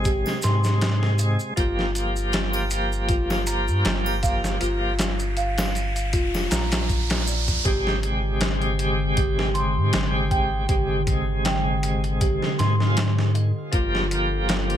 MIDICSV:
0, 0, Header, 1, 7, 480
1, 0, Start_track
1, 0, Tempo, 759494
1, 996, Time_signature, 4, 2, 24, 8
1, 9335, End_track
2, 0, Start_track
2, 0, Title_t, "Music box"
2, 0, Program_c, 0, 10
2, 31, Note_on_c, 0, 67, 75
2, 263, Note_off_c, 0, 67, 0
2, 276, Note_on_c, 0, 84, 96
2, 422, Note_off_c, 0, 84, 0
2, 754, Note_on_c, 0, 75, 73
2, 974, Note_off_c, 0, 75, 0
2, 992, Note_on_c, 0, 65, 80
2, 1452, Note_off_c, 0, 65, 0
2, 1472, Note_on_c, 0, 70, 75
2, 1621, Note_off_c, 0, 70, 0
2, 1952, Note_on_c, 0, 65, 78
2, 2183, Note_off_c, 0, 65, 0
2, 2193, Note_on_c, 0, 82, 91
2, 2341, Note_off_c, 0, 82, 0
2, 2672, Note_on_c, 0, 77, 74
2, 2892, Note_off_c, 0, 77, 0
2, 2914, Note_on_c, 0, 65, 80
2, 3373, Note_off_c, 0, 65, 0
2, 3394, Note_on_c, 0, 77, 75
2, 3624, Note_off_c, 0, 77, 0
2, 3874, Note_on_c, 0, 65, 82
2, 4104, Note_off_c, 0, 65, 0
2, 4114, Note_on_c, 0, 82, 102
2, 4261, Note_off_c, 0, 82, 0
2, 4594, Note_on_c, 0, 74, 76
2, 4813, Note_off_c, 0, 74, 0
2, 4835, Note_on_c, 0, 67, 79
2, 5294, Note_off_c, 0, 67, 0
2, 5317, Note_on_c, 0, 72, 74
2, 5463, Note_off_c, 0, 72, 0
2, 5794, Note_on_c, 0, 67, 82
2, 6024, Note_off_c, 0, 67, 0
2, 6031, Note_on_c, 0, 84, 95
2, 6180, Note_off_c, 0, 84, 0
2, 6516, Note_on_c, 0, 79, 72
2, 6735, Note_off_c, 0, 79, 0
2, 6753, Note_on_c, 0, 67, 85
2, 7213, Note_off_c, 0, 67, 0
2, 7235, Note_on_c, 0, 79, 72
2, 7465, Note_off_c, 0, 79, 0
2, 7715, Note_on_c, 0, 67, 84
2, 7945, Note_off_c, 0, 67, 0
2, 7954, Note_on_c, 0, 84, 99
2, 8102, Note_off_c, 0, 84, 0
2, 8434, Note_on_c, 0, 75, 77
2, 8653, Note_off_c, 0, 75, 0
2, 8674, Note_on_c, 0, 65, 78
2, 9133, Note_off_c, 0, 65, 0
2, 9152, Note_on_c, 0, 70, 74
2, 9301, Note_off_c, 0, 70, 0
2, 9335, End_track
3, 0, Start_track
3, 0, Title_t, "Tonewheel organ"
3, 0, Program_c, 1, 16
3, 0, Note_on_c, 1, 48, 93
3, 0, Note_on_c, 1, 56, 81
3, 960, Note_off_c, 1, 48, 0
3, 971, Note_off_c, 1, 56, 0
3, 988, Note_on_c, 1, 53, 74
3, 999, Note_on_c, 1, 58, 69
3, 1009, Note_on_c, 1, 67, 86
3, 1205, Note_off_c, 1, 53, 0
3, 1211, Note_off_c, 1, 58, 0
3, 1213, Note_on_c, 1, 53, 74
3, 1217, Note_off_c, 1, 67, 0
3, 1236, Note_on_c, 1, 58, 64
3, 1256, Note_on_c, 1, 67, 81
3, 2878, Note_off_c, 1, 53, 0
3, 2890, Note_off_c, 1, 58, 0
3, 2900, Note_off_c, 1, 67, 0
3, 2907, Note_on_c, 1, 53, 67
3, 2916, Note_on_c, 1, 58, 61
3, 2927, Note_on_c, 1, 67, 77
3, 3119, Note_off_c, 1, 53, 0
3, 3124, Note_off_c, 1, 58, 0
3, 3129, Note_off_c, 1, 67, 0
3, 4830, Note_on_c, 1, 48, 74
3, 4839, Note_on_c, 1, 56, 68
3, 4850, Note_on_c, 1, 67, 84
3, 5047, Note_off_c, 1, 48, 0
3, 5051, Note_off_c, 1, 56, 0
3, 5055, Note_on_c, 1, 48, 75
3, 5057, Note_off_c, 1, 67, 0
3, 5075, Note_on_c, 1, 56, 68
3, 5098, Note_on_c, 1, 67, 87
3, 6720, Note_off_c, 1, 48, 0
3, 6730, Note_off_c, 1, 56, 0
3, 6741, Note_off_c, 1, 67, 0
3, 6751, Note_on_c, 1, 48, 74
3, 6761, Note_on_c, 1, 56, 60
3, 6771, Note_on_c, 1, 67, 80
3, 6961, Note_off_c, 1, 48, 0
3, 6966, Note_off_c, 1, 56, 0
3, 6971, Note_off_c, 1, 67, 0
3, 6979, Note_on_c, 1, 48, 89
3, 6999, Note_on_c, 1, 56, 86
3, 8052, Note_off_c, 1, 48, 0
3, 8063, Note_off_c, 1, 56, 0
3, 8081, Note_on_c, 1, 48, 93
3, 8091, Note_on_c, 1, 56, 77
3, 8103, Note_on_c, 1, 65, 94
3, 8206, Note_off_c, 1, 48, 0
3, 8211, Note_off_c, 1, 56, 0
3, 8218, Note_off_c, 1, 65, 0
3, 8669, Note_on_c, 1, 53, 80
3, 8680, Note_on_c, 1, 58, 70
3, 8690, Note_on_c, 1, 67, 89
3, 8886, Note_off_c, 1, 53, 0
3, 8892, Note_off_c, 1, 58, 0
3, 8897, Note_off_c, 1, 67, 0
3, 8900, Note_on_c, 1, 53, 76
3, 8920, Note_on_c, 1, 58, 67
3, 8942, Note_on_c, 1, 67, 83
3, 9335, Note_off_c, 1, 53, 0
3, 9335, Note_off_c, 1, 58, 0
3, 9335, Note_off_c, 1, 67, 0
3, 9335, End_track
4, 0, Start_track
4, 0, Title_t, "Ambient pad"
4, 0, Program_c, 2, 92
4, 4830, Note_on_c, 2, 50, 82
4, 9335, Note_off_c, 2, 50, 0
4, 9335, End_track
5, 0, Start_track
5, 0, Title_t, "Sub bass"
5, 0, Program_c, 3, 38
5, 0, Note_on_c, 3, 32, 93
5, 142, Note_off_c, 3, 32, 0
5, 277, Note_on_c, 3, 44, 92
5, 863, Note_off_c, 3, 44, 0
5, 994, Note_on_c, 3, 31, 90
5, 2324, Note_on_c, 3, 43, 91
5, 2333, Note_off_c, 3, 31, 0
5, 2421, Note_off_c, 3, 43, 0
5, 2435, Note_on_c, 3, 31, 105
5, 2895, Note_off_c, 3, 31, 0
5, 2917, Note_on_c, 3, 31, 91
5, 3878, Note_on_c, 3, 29, 81
5, 3887, Note_off_c, 3, 31, 0
5, 4091, Note_off_c, 3, 29, 0
5, 4114, Note_on_c, 3, 34, 83
5, 4814, Note_off_c, 3, 34, 0
5, 4840, Note_on_c, 3, 32, 98
5, 6172, Note_on_c, 3, 44, 89
5, 6182, Note_off_c, 3, 32, 0
5, 6266, Note_off_c, 3, 44, 0
5, 6284, Note_on_c, 3, 32, 100
5, 6739, Note_off_c, 3, 32, 0
5, 6757, Note_on_c, 3, 32, 97
5, 7823, Note_off_c, 3, 32, 0
5, 7959, Note_on_c, 3, 44, 91
5, 8543, Note_off_c, 3, 44, 0
5, 8678, Note_on_c, 3, 31, 93
5, 9335, Note_off_c, 3, 31, 0
5, 9335, End_track
6, 0, Start_track
6, 0, Title_t, "Riser"
6, 0, Program_c, 4, 103
6, 992, Note_on_c, 4, 60, 69
6, 4834, Note_off_c, 4, 60, 0
6, 9335, End_track
7, 0, Start_track
7, 0, Title_t, "Drums"
7, 28, Note_on_c, 9, 82, 35
7, 33, Note_on_c, 9, 36, 112
7, 33, Note_on_c, 9, 42, 94
7, 91, Note_off_c, 9, 82, 0
7, 96, Note_off_c, 9, 36, 0
7, 96, Note_off_c, 9, 42, 0
7, 163, Note_on_c, 9, 81, 58
7, 170, Note_on_c, 9, 38, 41
7, 227, Note_off_c, 9, 81, 0
7, 233, Note_off_c, 9, 38, 0
7, 266, Note_on_c, 9, 82, 90
7, 274, Note_on_c, 9, 42, 64
7, 278, Note_on_c, 9, 38, 51
7, 329, Note_off_c, 9, 82, 0
7, 337, Note_off_c, 9, 42, 0
7, 341, Note_off_c, 9, 38, 0
7, 404, Note_on_c, 9, 82, 46
7, 409, Note_on_c, 9, 38, 34
7, 467, Note_off_c, 9, 82, 0
7, 472, Note_off_c, 9, 38, 0
7, 515, Note_on_c, 9, 42, 79
7, 515, Note_on_c, 9, 82, 34
7, 519, Note_on_c, 9, 38, 119
7, 578, Note_off_c, 9, 42, 0
7, 578, Note_off_c, 9, 82, 0
7, 582, Note_off_c, 9, 38, 0
7, 650, Note_on_c, 9, 38, 48
7, 713, Note_off_c, 9, 38, 0
7, 750, Note_on_c, 9, 82, 84
7, 753, Note_on_c, 9, 42, 62
7, 813, Note_off_c, 9, 82, 0
7, 816, Note_off_c, 9, 42, 0
7, 881, Note_on_c, 9, 82, 49
7, 945, Note_off_c, 9, 82, 0
7, 994, Note_on_c, 9, 36, 107
7, 994, Note_on_c, 9, 42, 85
7, 994, Note_on_c, 9, 82, 35
7, 1057, Note_off_c, 9, 42, 0
7, 1057, Note_off_c, 9, 82, 0
7, 1058, Note_off_c, 9, 36, 0
7, 1131, Note_on_c, 9, 38, 36
7, 1194, Note_off_c, 9, 38, 0
7, 1233, Note_on_c, 9, 42, 67
7, 1237, Note_on_c, 9, 82, 71
7, 1297, Note_off_c, 9, 42, 0
7, 1300, Note_off_c, 9, 82, 0
7, 1366, Note_on_c, 9, 82, 47
7, 1430, Note_off_c, 9, 82, 0
7, 1469, Note_on_c, 9, 82, 34
7, 1474, Note_on_c, 9, 42, 86
7, 1478, Note_on_c, 9, 38, 108
7, 1533, Note_off_c, 9, 82, 0
7, 1537, Note_off_c, 9, 42, 0
7, 1541, Note_off_c, 9, 38, 0
7, 1601, Note_on_c, 9, 81, 63
7, 1605, Note_on_c, 9, 42, 37
7, 1665, Note_off_c, 9, 81, 0
7, 1668, Note_off_c, 9, 42, 0
7, 1710, Note_on_c, 9, 82, 79
7, 1712, Note_on_c, 9, 42, 67
7, 1773, Note_off_c, 9, 82, 0
7, 1775, Note_off_c, 9, 42, 0
7, 1847, Note_on_c, 9, 82, 46
7, 1910, Note_off_c, 9, 82, 0
7, 1950, Note_on_c, 9, 42, 92
7, 1954, Note_on_c, 9, 36, 115
7, 1957, Note_on_c, 9, 82, 36
7, 2013, Note_off_c, 9, 42, 0
7, 2017, Note_off_c, 9, 36, 0
7, 2020, Note_off_c, 9, 82, 0
7, 2087, Note_on_c, 9, 81, 53
7, 2089, Note_on_c, 9, 38, 53
7, 2150, Note_off_c, 9, 81, 0
7, 2152, Note_off_c, 9, 38, 0
7, 2192, Note_on_c, 9, 42, 62
7, 2192, Note_on_c, 9, 82, 98
7, 2255, Note_off_c, 9, 42, 0
7, 2255, Note_off_c, 9, 82, 0
7, 2325, Note_on_c, 9, 82, 47
7, 2388, Note_off_c, 9, 82, 0
7, 2432, Note_on_c, 9, 42, 81
7, 2435, Note_on_c, 9, 82, 36
7, 2437, Note_on_c, 9, 38, 111
7, 2495, Note_off_c, 9, 42, 0
7, 2498, Note_off_c, 9, 82, 0
7, 2500, Note_off_c, 9, 38, 0
7, 2567, Note_on_c, 9, 81, 69
7, 2630, Note_off_c, 9, 81, 0
7, 2672, Note_on_c, 9, 42, 76
7, 2675, Note_on_c, 9, 36, 97
7, 2680, Note_on_c, 9, 82, 77
7, 2735, Note_off_c, 9, 42, 0
7, 2738, Note_off_c, 9, 36, 0
7, 2743, Note_off_c, 9, 82, 0
7, 2807, Note_on_c, 9, 38, 46
7, 2809, Note_on_c, 9, 82, 48
7, 2870, Note_off_c, 9, 38, 0
7, 2872, Note_off_c, 9, 82, 0
7, 2912, Note_on_c, 9, 42, 58
7, 2923, Note_on_c, 9, 82, 39
7, 2975, Note_off_c, 9, 42, 0
7, 2986, Note_off_c, 9, 82, 0
7, 3151, Note_on_c, 9, 42, 78
7, 3156, Note_on_c, 9, 38, 104
7, 3162, Note_on_c, 9, 82, 74
7, 3214, Note_off_c, 9, 42, 0
7, 3219, Note_off_c, 9, 38, 0
7, 3225, Note_off_c, 9, 82, 0
7, 3284, Note_on_c, 9, 42, 35
7, 3285, Note_on_c, 9, 82, 52
7, 3347, Note_off_c, 9, 42, 0
7, 3348, Note_off_c, 9, 82, 0
7, 3392, Note_on_c, 9, 42, 58
7, 3400, Note_on_c, 9, 82, 33
7, 3455, Note_off_c, 9, 42, 0
7, 3463, Note_off_c, 9, 82, 0
7, 3524, Note_on_c, 9, 42, 70
7, 3529, Note_on_c, 9, 38, 96
7, 3532, Note_on_c, 9, 81, 74
7, 3588, Note_off_c, 9, 42, 0
7, 3592, Note_off_c, 9, 38, 0
7, 3595, Note_off_c, 9, 81, 0
7, 3635, Note_on_c, 9, 42, 37
7, 3639, Note_on_c, 9, 82, 86
7, 3698, Note_off_c, 9, 42, 0
7, 3702, Note_off_c, 9, 82, 0
7, 3766, Note_on_c, 9, 42, 57
7, 3768, Note_on_c, 9, 82, 53
7, 3830, Note_off_c, 9, 42, 0
7, 3831, Note_off_c, 9, 82, 0
7, 3874, Note_on_c, 9, 42, 84
7, 3876, Note_on_c, 9, 36, 105
7, 3883, Note_on_c, 9, 82, 35
7, 3937, Note_off_c, 9, 42, 0
7, 3939, Note_off_c, 9, 36, 0
7, 3946, Note_off_c, 9, 82, 0
7, 4009, Note_on_c, 9, 81, 62
7, 4012, Note_on_c, 9, 38, 35
7, 4073, Note_off_c, 9, 81, 0
7, 4075, Note_off_c, 9, 38, 0
7, 4115, Note_on_c, 9, 42, 78
7, 4117, Note_on_c, 9, 82, 84
7, 4119, Note_on_c, 9, 38, 96
7, 4178, Note_off_c, 9, 42, 0
7, 4181, Note_off_c, 9, 82, 0
7, 4182, Note_off_c, 9, 38, 0
7, 4244, Note_on_c, 9, 82, 47
7, 4246, Note_on_c, 9, 42, 73
7, 4250, Note_on_c, 9, 38, 100
7, 4307, Note_off_c, 9, 82, 0
7, 4309, Note_off_c, 9, 42, 0
7, 4313, Note_off_c, 9, 38, 0
7, 4356, Note_on_c, 9, 36, 84
7, 4357, Note_on_c, 9, 42, 62
7, 4357, Note_on_c, 9, 82, 36
7, 4419, Note_off_c, 9, 36, 0
7, 4421, Note_off_c, 9, 42, 0
7, 4421, Note_off_c, 9, 82, 0
7, 4488, Note_on_c, 9, 42, 78
7, 4492, Note_on_c, 9, 38, 100
7, 4551, Note_off_c, 9, 42, 0
7, 4555, Note_off_c, 9, 38, 0
7, 4597, Note_on_c, 9, 82, 84
7, 4660, Note_off_c, 9, 82, 0
7, 4726, Note_on_c, 9, 82, 46
7, 4728, Note_on_c, 9, 36, 82
7, 4728, Note_on_c, 9, 42, 57
7, 4789, Note_off_c, 9, 82, 0
7, 4791, Note_off_c, 9, 36, 0
7, 4791, Note_off_c, 9, 42, 0
7, 4836, Note_on_c, 9, 36, 110
7, 4837, Note_on_c, 9, 42, 87
7, 4900, Note_off_c, 9, 36, 0
7, 4900, Note_off_c, 9, 42, 0
7, 4974, Note_on_c, 9, 38, 36
7, 5037, Note_off_c, 9, 38, 0
7, 5076, Note_on_c, 9, 42, 66
7, 5139, Note_off_c, 9, 42, 0
7, 5313, Note_on_c, 9, 42, 89
7, 5317, Note_on_c, 9, 38, 110
7, 5376, Note_off_c, 9, 42, 0
7, 5380, Note_off_c, 9, 38, 0
7, 5445, Note_on_c, 9, 42, 37
7, 5508, Note_off_c, 9, 42, 0
7, 5556, Note_on_c, 9, 42, 70
7, 5619, Note_off_c, 9, 42, 0
7, 5795, Note_on_c, 9, 42, 89
7, 5796, Note_on_c, 9, 36, 123
7, 5859, Note_off_c, 9, 36, 0
7, 5859, Note_off_c, 9, 42, 0
7, 5934, Note_on_c, 9, 38, 56
7, 5997, Note_off_c, 9, 38, 0
7, 6036, Note_on_c, 9, 42, 62
7, 6099, Note_off_c, 9, 42, 0
7, 6275, Note_on_c, 9, 42, 89
7, 6279, Note_on_c, 9, 38, 123
7, 6338, Note_off_c, 9, 42, 0
7, 6342, Note_off_c, 9, 38, 0
7, 6516, Note_on_c, 9, 36, 93
7, 6517, Note_on_c, 9, 42, 69
7, 6579, Note_off_c, 9, 36, 0
7, 6580, Note_off_c, 9, 42, 0
7, 6756, Note_on_c, 9, 36, 112
7, 6756, Note_on_c, 9, 42, 84
7, 6819, Note_off_c, 9, 36, 0
7, 6819, Note_off_c, 9, 42, 0
7, 6996, Note_on_c, 9, 36, 98
7, 6996, Note_on_c, 9, 42, 67
7, 7059, Note_off_c, 9, 42, 0
7, 7060, Note_off_c, 9, 36, 0
7, 7237, Note_on_c, 9, 42, 87
7, 7241, Note_on_c, 9, 38, 112
7, 7300, Note_off_c, 9, 42, 0
7, 7304, Note_off_c, 9, 38, 0
7, 7477, Note_on_c, 9, 42, 66
7, 7540, Note_off_c, 9, 42, 0
7, 7608, Note_on_c, 9, 42, 44
7, 7672, Note_off_c, 9, 42, 0
7, 7717, Note_on_c, 9, 36, 125
7, 7717, Note_on_c, 9, 42, 98
7, 7780, Note_off_c, 9, 36, 0
7, 7780, Note_off_c, 9, 42, 0
7, 7852, Note_on_c, 9, 38, 42
7, 7916, Note_off_c, 9, 38, 0
7, 7958, Note_on_c, 9, 42, 68
7, 7963, Note_on_c, 9, 38, 52
7, 8021, Note_off_c, 9, 42, 0
7, 8026, Note_off_c, 9, 38, 0
7, 8092, Note_on_c, 9, 38, 39
7, 8155, Note_off_c, 9, 38, 0
7, 8196, Note_on_c, 9, 42, 92
7, 8200, Note_on_c, 9, 38, 121
7, 8259, Note_off_c, 9, 42, 0
7, 8263, Note_off_c, 9, 38, 0
7, 8333, Note_on_c, 9, 38, 47
7, 8396, Note_off_c, 9, 38, 0
7, 8438, Note_on_c, 9, 42, 63
7, 8501, Note_off_c, 9, 42, 0
7, 8675, Note_on_c, 9, 42, 88
7, 8677, Note_on_c, 9, 36, 112
7, 8738, Note_off_c, 9, 42, 0
7, 8740, Note_off_c, 9, 36, 0
7, 8816, Note_on_c, 9, 38, 37
7, 8879, Note_off_c, 9, 38, 0
7, 8919, Note_on_c, 9, 42, 68
7, 8982, Note_off_c, 9, 42, 0
7, 9157, Note_on_c, 9, 42, 86
7, 9161, Note_on_c, 9, 38, 109
7, 9220, Note_off_c, 9, 42, 0
7, 9224, Note_off_c, 9, 38, 0
7, 9290, Note_on_c, 9, 42, 40
7, 9335, Note_off_c, 9, 42, 0
7, 9335, End_track
0, 0, End_of_file